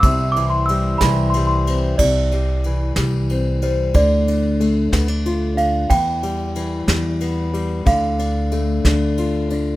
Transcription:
<<
  \new Staff \with { instrumentName = "Celesta" } { \time 6/8 \key c \major \tempo 4. = 61 e'''8 d'''16 c'''16 e'''8 b''8 c'''16 c'''8 r16 | d''2~ d''8 c''8 | d''2~ d''8 f''8 | g''2. |
f''2~ f''8 r8 | }
  \new Staff \with { instrumentName = "Accordion" } { \time 6/8 \key c \major <g e' c'' e''>2. | r2. | r2. | r2. |
r2. | }
  \new Staff \with { instrumentName = "Steel-string acoustic guitar" } { \clef bass \time 6/8 \key c \major << { r4 g4 g8 c'8 | r8 g4 g8 c'8 g8 | r8 d'4 b16 d'16 f'8 d'8 | r8 g4 g8 b8 g8 |
r8 d'4 d'8 f'8 d'8 | } \\ { c8 e4 e4. | c4 e2 | d4 a2 | e,4 e2 |
d4 a2 | } >> }
  \new Staff \with { instrumentName = "Upright bass" } { \clef bass \time 6/8 \key c \major c,4. c,4. | c,4. c,4. | d,4. d,4. | e,4. e,4. |
d,4. d,4. | }
  \new DrumStaff \with { instrumentName = "Drums" } \drummode { \time 6/8 <bd cymr>8 cymr8 cymr8 <bd cymr sn>8 cymr8 cymr8 | <cymc bd>8 cymr8 cymr8 <cymr sn>8 cymr8 cymr8 | <bd cymr>8 cymr8 cymr8 <bd cymr sn>8 cymr8 cymr8 | <bd cymr>8 cymr8 cymr8 <cymr sn>8 cymr8 cymr8 |
<bd cymr>8 cymr8 cymr8 <bd cymr sn>8 cymr8 cymr8 | }
>>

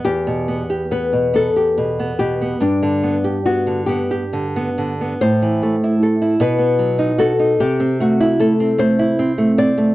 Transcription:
<<
  \new Staff \with { instrumentName = "Nylon-string guitar" } { \time 6/8 \key e \minor \tempo 4. = 48 g'4 b'8 a'4 g'8 | d'4 fis'8 g'4. | c''4. b'4 a'8 | g'8 fis'8 a'8 c''4 d''8 | }
  \new Staff \with { instrumentName = "Nylon-string guitar" } { \time 6/8 \key e \minor e,16 b,16 b16 g'16 b16 b,16 b16 g'16 b,16 b16 b,16 b16 | g,16 d16 b16 g'16 b16 d16 b16 g'16 d16 b16 d16 b16 | a,16 e16 a16 e'16 a'16 e'16 b,16 b16 fis16 dis'16 fis'16 dis'16 | c16 c'16 a16 e'16 a16 c'16 a16 e'16 c'16 a16 c'16 a16 | }
>>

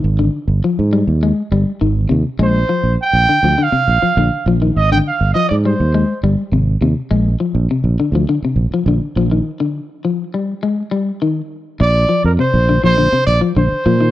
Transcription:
<<
  \new Staff \with { instrumentName = "Trumpet" } { \time 4/4 \key bes \mixolydian \tempo 4 = 102 r1 | c''4 g''4 f''4. r8 | ees''16 g''16 f''8 ees''16 d''16 c''4 r4. | r1 |
r1 | d''8. bes'16 c''8. c''8. d''8 c''4 | }
  \new Staff \with { instrumentName = "Clean electric guitar" } { \clef bass \time 4/4 \key bes \mixolydian r16 d8 r16 f8 g8 aes8 g8 ees8 c8 | aes8 f8 r8 d16 f16 d16 c8 f16 d8 f16 ees16~ | ees16 d8 r16 f8 g8 aes8 g8 c8 c8 | aes8 f8 c8 d16 f16 d16 c8 f16 d8 f16 ees16~ |
ees16 d8 r16 f8 g8 aes8 g8 ees8 r8 | r8 f8 c8 d16 f16 d16 c8 f16 d8 f16 ees16 | }
  \new Staff \with { instrumentName = "Fingered electric bass" } { \clef bass \time 4/4 \key bes \mixolydian aes,,8 r16 g,,16 r16 aes,8 ees,8 r16 g,,16 r16 aes,,8 ees,16 r16 | bes,,8 r16 bes,,16 r16 bes,,16 r16 d,16 r8 bes,,16 r16 bes,,16 r16 bes,,8 | aes,,8 r16 g,,16 r16 aes,8 ees,8 r16 g,,16 r16 aes,,8 ees,16 r16 | bes,,8 r16 bes,,16 r16 bes,,16 r16 d,16 r8 bes,,16 r16 bes,,16 r16 bes,,8 |
r1 | bes,,8 r16 f,16 r16 bes,,8 bes,,8 r16 bes,,16 r16 bes,,16 r16 bes,8 | }
>>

